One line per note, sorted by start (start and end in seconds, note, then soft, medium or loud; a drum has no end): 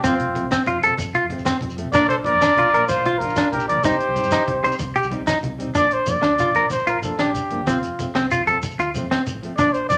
0.03 0.17 F1 loud
0.03 0.13 F3 medium
0.03 0.14 A3 medium
0.03 0.48 C4 medium
0.03 0.14 C4 medium
0.03 0.48 F4 medium
0.03 kick medium
0.03 closed hi-hat medium
0.03 muted conga medium
0.03 low conga medium
0.03 shekere medium
0.19 closed hi-hat soft
0.19 high conga medium
0.27 0.34 F1 medium
0.34 0.44 F3 medium
0.34 0.45 A3 medium
0.34 0.46 C4 medium
0.34 closed hi-hat soft
0.34 muted conga medium
0.34 low conga medium
0.43 0.56 C2 medium
0.43 high conga medium
0.51 0.62 C4 medium
0.51 snare medium
0.51 closed hi-hat medium
0.51 shekere medium
0.66 0.80 F1 medium
0.66 0.77 F4 medium
0.66 closed hi-hat soft
0.66 muted conga medium
0.66 high conga medium
0.66 low conga medium
0.81 0.90 F1 medium
0.81 0.92 F3 medium
0.81 0.92 A3 medium
0.81 0.93 C4 medium
0.81 0.93 A4 medium
0.81 closed hi-hat soft
0.90 high conga medium
0.90 low conga soft
0.98 1.12 F1 medium
0.98 kick medium
0.98 closed hi-hat medium
0.98 muted conga medium
0.98 low conga medium
0.98 shekere medium
1.14 1.25 F4 medium
1.14 closed hi-hat soft
1.14 high conga medium
1.14 low conga soft
1.22 1.36 F1 medium
1.22 low conga soft
1.29 1.39 F3 medium
1.29 1.41 A3 medium
1.29 1.41 C4 medium
1.29 closed hi-hat soft
1.29 muted conga medium
1.29 low conga medium
1.38 1.52 F1 medium
1.38 high conga medium
1.38 shekere soft
1.45 1.56 C4 medium
1.45 snare medium
1.45 closed hi-hat medium
1.45 shekere medium
1.61 1.75 F1 loud
1.61 closed hi-hat soft
1.61 muted conga medium
1.61 high conga medium
1.61 low conga medium
1.69 low conga soft
1.69 shekere soft
1.77 1.84 F2 medium
1.77 1.87 F3 medium
1.77 1.88 A3 medium
1.77 1.89 C4 medium
1.77 closed hi-hat soft
1.84 high conga medium
1.92 2.07 A#1 loud
1.92 2.03 F3 medium
1.92 2.04 A#3 medium
1.92 2.04 D4 medium
1.92 2.08 A#4 medium
1.92 2.08 D5 loud
1.92 kick medium
1.92 closed hi-hat medium
1.92 muted conga medium
1.92 low conga medium
1.92 shekere medium
2.08 2.16 A4 medium
2.08 2.16 C5 medium
2.08 closed hi-hat soft
2.08 high conga medium
2.17 2.24 A#1 medium
2.24 2.35 F3 medium
2.24 2.35 A#3 medium
2.24 2.36 D4 medium
2.24 2.85 A#4 medium
2.24 2.85 D5 loud
2.24 closed hi-hat soft
2.24 muted conga medium
2.24 low conga medium
2.33 2.47 F2 medium
2.33 high conga medium
2.41 2.52 D4 medium
2.41 snare medium
2.41 closed hi-hat medium
2.41 shekere medium
2.57 2.71 A#1 medium
2.57 2.68 F4 medium
2.57 closed hi-hat soft
2.57 muted conga medium
2.57 high conga medium
2.57 low conga medium
2.71 2.80 A#1 medium
2.71 2.82 F3 medium
2.71 2.83 A#3 medium
2.71 2.84 D4 medium
2.71 2.84 A#4 medium
2.71 closed hi-hat soft
2.81 high conga medium
2.81 low conga soft
2.87 3.03 A#1 medium
2.87 3.20 F4 medium
2.87 3.20 C5 medium
2.87 kick medium
2.87 closed hi-hat medium
2.87 muted conga medium
2.87 low conga medium
2.87 shekere medium
3.04 3.16 F4 medium
3.04 closed hi-hat soft
3.04 high conga medium
3.04 low conga soft
3.13 3.26 A#1 medium
3.13 low conga soft
3.19 3.30 F3 medium
3.19 3.51 F4 medium
3.19 3.50 A#4 medium
3.19 closed hi-hat soft
3.19 muted conga medium
3.19 low conga medium
3.24 3.32 D4 medium
3.28 3.43 A#1 medium
3.28 high conga medium
3.28 shekere soft
3.36 3.47 D4 medium
3.36 snare medium
3.36 closed hi-hat medium
3.36 shekere medium
3.51 3.66 A#1 loud
3.51 3.67 G4 medium
3.51 3.67 A#4 medium
3.51 closed hi-hat soft
3.51 muted conga medium
3.51 high conga medium
3.51 low conga medium
3.60 low conga soft
3.60 shekere soft
3.68 3.76 D2 medium
3.68 3.78 F3 medium
3.68 3.79 A#3 medium
3.68 3.80 D4 medium
3.68 3.86 A#4 medium
3.68 3.86 D5 medium
3.68 closed hi-hat soft
3.77 high conga medium
3.83 3.98 C2 medium
3.83 3.93 G3 medium
3.83 3.94 C4 medium
3.83 3.95 D#4 medium
3.83 4.80 G4 medium
3.83 4.80 C5 medium
3.83 kick medium
3.83 closed hi-hat medium
3.83 muted conga medium
3.83 low conga medium
3.83 shekere loud
3.92 low conga soft
3.92 shekere soft
4.00 closed hi-hat soft
4.08 4.15 C2 medium
4.08 low conga soft
4.15 4.25 G3 medium
4.15 4.26 C4 medium
4.15 4.27 D#4 medium
4.15 closed hi-hat soft
4.15 muted conga medium
4.15 low conga medium
4.15 shekere soft
4.24 4.38 G2 medium
4.24 high conga medium
4.24 shekere soft
4.31 4.42 D#4 medium
4.31 snare medium
4.31 closed hi-hat medium
4.31 low conga soft
4.31 shekere medium
4.48 4.61 C2 medium
4.48 kick medium
4.48 closed hi-hat soft
4.48 muted conga medium
4.48 high conga medium
4.48 low conga medium
4.63 4.71 C2 medium
4.63 4.73 G3 medium
4.63 4.74 C4 medium
4.63 4.74 D#4 medium
4.63 4.74 C5 medium
4.63 closed hi-hat soft
4.63 shekere soft
4.72 low conga soft
4.72 shekere soft
4.79 4.93 C2 medium
4.79 kick medium
4.79 closed hi-hat medium
4.79 muted conga medium
4.79 low conga medium
4.79 shekere loud
4.95 5.06 G4 medium
4.95 closed hi-hat soft
4.95 high conga medium
4.95 shekere soft
5.03 5.17 C2 medium
5.03 low conga soft
5.03 shekere soft
5.10 5.21 G3 medium
5.10 5.21 C4 medium
5.10 5.22 D#4 medium
5.10 closed hi-hat soft
5.10 muted conga medium
5.10 low conga medium
5.20 5.33 C2 medium
5.20 high conga medium
5.27 5.37 D#4 medium
5.27 snare medium
5.27 closed hi-hat medium
5.27 shekere medium
5.36 low conga soft
5.43 5.57 C2 medium
5.43 closed hi-hat soft
5.43 muted conga medium
5.43 high conga medium
5.43 low conga medium
5.58 5.66 D#2 medium
5.58 5.68 G3 medium
5.58 5.69 C4 medium
5.58 5.70 D#4 medium
5.58 closed hi-hat soft
5.67 high conga medium
5.67 low conga soft
5.75 5.82 A#1 medium
5.75 5.85 F3 medium
5.75 5.86 A#3 medium
5.75 5.85 D4 medium
5.75 5.86 D4 medium
5.75 5.95 D5 loud
5.75 kick medium
5.75 closed hi-hat medium
5.75 muted conga medium
5.75 high conga medium
5.75 low conga medium
5.75 shekere medium
5.83 5.90 A#1 medium
5.91 5.98 A#1 medium
5.91 6.11 C5 medium
5.91 closed hi-hat soft
5.91 shekere soft
6.06 6.14 F2 medium
6.06 6.16 F3 soft
6.06 6.17 A#3 medium
6.06 6.18 D4 medium
6.06 6.71 D5 medium
6.06 kick medium
6.06 closed hi-hat soft
6.06 muted conga medium
6.06 high conga medium
6.06 low conga medium
6.06 shekere medium
6.22 6.48 D2 medium
6.22 6.33 D4 medium
6.22 snare medium
6.22 closed hi-hat medium
6.38 6.50 F4 medium
6.38 snare soft
6.38 closed hi-hat soft
6.38 muted conga medium
6.38 high conga medium
6.38 low conga medium
6.38 shekere medium
6.48 6.54 A#1 medium
6.55 6.64 F3 medium
6.55 6.65 A#3 medium
6.55 6.66 D4 medium
6.55 6.65 A#4 medium
6.55 kick medium
6.55 closed hi-hat soft
6.64 6.77 A#1 medium
6.70 6.91 C5 medium
6.70 kick medium
6.70 closed hi-hat medium
6.70 muted conga medium
6.70 high conga medium
6.70 low conga medium
6.70 shekere medium
6.79 low conga soft
6.79 shekere soft
6.87 6.94 A#1 medium
6.87 6.97 F4 medium
6.87 7.03 A#4 medium
6.87 closed hi-hat soft
6.87 shekere soft
6.96 7.09 G1 medium
7.02 7.12 F3 medium
7.02 7.13 A#3 medium
7.02 7.14 D4 medium
7.02 7.22 A4 medium
7.02 closed hi-hat soft
7.02 muted conga medium
7.02 high conga medium
7.02 low conga medium
7.02 shekere medium
7.18 7.33 A#1 medium
7.18 7.29 D4 medium
7.18 7.67 G4 medium
7.18 snare medium
7.18 closed hi-hat medium
7.27 low conga soft
7.34 closed hi-hat soft
7.34 muted conga medium
7.34 high conga medium
7.34 low conga medium
7.34 shekere medium
7.50 7.58 G1 medium
7.50 7.60 F3 medium
7.50 7.61 A#3 medium
7.50 7.61 D4 medium
7.50 closed hi-hat soft
7.60 7.66 D2 medium
7.67 7.74 F1 medium
7.67 7.76 F3 medium
7.67 7.77 A3 medium
7.67 7.77 C4 medium
7.67 8.12 F4 medium
7.67 kick medium
7.67 closed hi-hat medium
7.67 muted conga medium
7.67 high conga medium
7.67 low conga medium
7.67 shekere medium
7.74 7.81 D2 medium
7.83 7.90 F1 medium
7.83 closed hi-hat soft
7.83 shekere soft
7.99 8.06 F1 medium
7.99 8.08 F3 medium
7.99 8.09 A3 medium
7.99 8.10 C4 medium
7.99 kick medium
7.99 closed hi-hat soft
7.99 muted conga medium
7.99 high conga medium
7.99 low conga medium
7.99 shekere medium
8.15 8.28 C2 medium
8.15 8.25 C4 medium
8.15 snare medium
8.15 closed hi-hat medium
8.24 low conga soft
8.31 8.41 F4 medium
8.31 closed hi-hat soft
8.31 muted conga medium
8.31 high conga medium
8.31 low conga medium
8.31 shekere medium
8.39 8.45 C2 medium
8.47 8.56 F3 medium
8.47 8.57 A3 medium
8.47 8.58 C4 medium
8.47 8.57 A4 medium
8.47 kick medium
8.47 closed hi-hat soft
8.55 8.68 F1 medium
8.62 kick medium
8.62 closed hi-hat medium
8.62 muted conga medium
8.62 high conga medium
8.62 low conga medium
8.62 shekere medium
8.71 low conga soft
8.71 shekere soft
8.78 8.92 D2 medium
8.78 8.89 F4 medium
8.78 closed hi-hat soft
8.78 shekere soft
8.94 9.04 F3 medium
8.94 9.05 A3 medium
8.94 9.06 C4 medium
8.94 closed hi-hat soft
8.94 muted conga medium
8.94 high conga medium
8.94 low conga medium
8.94 shekere medium
9.03 9.16 F1 medium
9.11 9.21 C4 medium
9.11 snare medium
9.11 closed hi-hat medium
9.19 low conga soft
9.27 closed hi-hat soft
9.27 muted conga medium
9.27 high conga medium
9.27 shekere medium
9.35 9.48 A1 medium
9.42 9.52 F3 medium
9.42 9.53 A3 medium
9.42 9.54 C4 medium
9.42 closed hi-hat soft
9.57 9.65 A#1 medium
9.57 9.68 F3 medium
9.57 9.69 A#3 medium
9.57 9.69 D4 medium
9.57 9.74 D5 loud
9.57 kick medium
9.57 closed hi-hat medium
9.57 muted conga medium
9.57 high conga medium
9.57 low conga medium
9.57 shekere medium
9.66 9.73 A#1 medium
9.73 9.81 A#1 medium
9.73 9.88 C5 medium
9.73 closed hi-hat soft
9.73 shekere soft
9.89 9.97 F2 medium
9.89 9.98 F3 medium
9.89 9.98 D5 loud
9.89 kick medium
9.89 closed hi-hat soft
9.89 muted conga medium
9.89 high conga medium
9.89 low conga medium
9.89 shekere medium
9.94 9.98 D4 medium